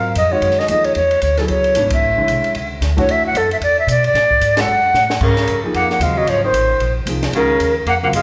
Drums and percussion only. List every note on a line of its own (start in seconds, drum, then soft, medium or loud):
0.15 hi-hat pedal soft
0.15 ride medium
0.42 ride medium
0.51 snare soft
0.60 snare soft
0.68 hi-hat pedal soft
0.68 ride medium
0.84 ride soft
0.95 ride medium
1.11 ride soft
1.22 hi-hat pedal soft
1.22 ride medium
1.37 snare soft
1.37 ride soft
1.48 ride medium
1.64 ride soft
1.75 hi-hat pedal medium
1.75 ride medium
1.90 kick medium
1.90 ride medium
2.28 hi-hat pedal medium
2.28 ride medium
2.44 ride soft
2.55 ride medium
2.82 snare soft
2.82 hi-hat pedal medium
2.82 ride medium
2.98 kick medium
2.98 ride soft
3.09 ride medium
3.35 hi-hat pedal soft
3.35 ride medium
3.51 ride soft
3.62 ride medium
3.88 hi-hat pedal medium
3.88 ride medium
4.04 ride soft
4.15 snare soft
4.15 ride medium
4.31 kick medium
4.41 hi-hat pedal medium
4.41 ride medium
4.57 snare medium
4.57 ride medium
4.94 snare soft
4.94 hi-hat pedal soft
5.10 snare medium
5.21 kick medium
5.21 crash medium
5.37 snare soft
5.37 ride soft
5.47 hi-hat pedal soft
5.47 ride medium
5.74 ride soft
5.90 snare soft
6.01 hi-hat pedal soft
6.01 ride medium
6.27 ride medium
6.54 hi-hat pedal medium
6.54 ride medium
6.80 ride soft
7.07 hi-hat pedal soft
7.07 ride medium
7.23 snare medium
7.23 ride soft
7.33 ride medium
7.60 hi-hat pedal soft
7.60 ride medium
7.87 ride medium
8.13 hi-hat pedal medium
8.13 ride medium